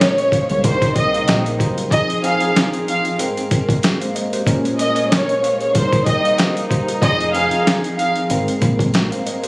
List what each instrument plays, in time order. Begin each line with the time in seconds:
Already playing: tine electric piano A#2 G#3 C#4 G4 A#4, string section G#3 A#3 C#4
0.00 violin section C#5, snare, closed hi-hat
0.18 tine electric piano A#4 D#5, closed hi-hat
0.32 tine electric piano C5 F5, kick, closed hi-hat
0.49 fingered electric bass C2, tine electric piano G#4 C#5, violin section C#5, closed hi-hat
0.63 fingered electric bass C2, tine electric piano C3 G3 D#4 A#4, string section C3 G3 D#4, violin section C5, kick, closed hi-hat
0.82 kick, closed hi-hat
0.95 tine electric piano C5 D#5 G5, violin section D#5, kick, closed hi-hat
1.14 tine electric piano F5, closed hi-hat
1.27 fingered electric bass A#1, tine electric piano C5 F5 G5, snare, closed hi-hat
1.44 tine electric piano A#4 D#5, closed hi-hat
1.59 fingered electric bass F#1, tine electric piano G4 C5 A#5, kick, closed hi-hat
1.77 tine electric piano F4 A#4, closed hi-hat
1.91 tine electric piano F3 C4 D#4 G#4, string section F3 C4 D#4 G#4, violin section D#5, kick, closed hi-hat
2.10 closed hi-hat
2.22 tine electric piano F3 C4 D#4 G#4, violin section F5, closed hi-hat
2.40 closed hi-hat
2.56 snare, closed hi-hat
2.73 closed hi-hat
2.88 violin section F5, closed hi-hat
3.05 closed hi-hat
3.18 tine electric piano G#2 G#3 C4 A#4, string section G#3 A#3, closed hi-hat
3.37 closed hi-hat
3.51 kick, closed hi-hat
3.69 kick, closed hi-hat
3.83 snare, closed hi-hat
4.01 tine electric piano C5 F5, closed hi-hat
4.15 tine electric piano A#4 D#5, closed hi-hat
4.33 tine electric piano G4 C5, closed hi-hat
4.46 tine electric piano A#2 G#3 C#4 A#4, string section G#3 C#4, kick, closed hi-hat
4.65 closed hi-hat
4.79 violin section D#5, closed hi-hat
4.96 closed hi-hat
5.11 violin section C#5, snare, closed hi-hat
5.29 tine electric piano A#4 D#5, closed hi-hat
5.43 tine electric piano C5 F5, closed hi-hat
5.60 tine electric piano G#4 C#5, violin section C#5, closed hi-hat
5.74 tine electric piano C3 G3 D#4 A#4, string section C3 G3 D#4, violin section C5, kick, closed hi-hat
5.93 kick, closed hi-hat
6.06 tine electric piano C5 D#5 G5, violin section D#5, kick, closed hi-hat
6.24 tine electric piano F5, closed hi-hat
6.38 tine electric piano C5 F5 G5, snare, closed hi-hat
6.55 tine electric piano A#4 D#5, closed hi-hat
6.70 tine electric piano G4 C5 A#5, kick, closed hi-hat
6.88 tine electric piano F4 A#4, closed hi-hat
7.01 fingered electric bass F1, tine electric piano F3 C4 D#4 G#4, string section F3 C4 G#4, violin section D#5, kick, closed hi-hat
7.20 closed hi-hat
7.33 tine electric piano F3 C4 D#4 G#4, violin section F5, closed hi-hat
7.51 closed hi-hat
7.67 snare, closed hi-hat
7.84 closed hi-hat
7.98 violin section F5, closed hi-hat
8.16 closed hi-hat
8.29 fingered electric bass G#1, tine electric piano G#2 G#3 C4 A#4, string section G#3 A#3, closed hi-hat
8.48 closed hi-hat
8.62 fingered electric bass A#1, kick, closed hi-hat
8.79 kick, closed hi-hat
8.94 snare, closed hi-hat
9.12 tine electric piano C5 F5, closed hi-hat
9.26 tine electric piano A#4 D#5, closed hi-hat
9.43 tine electric piano G4 C5, closed hi-hat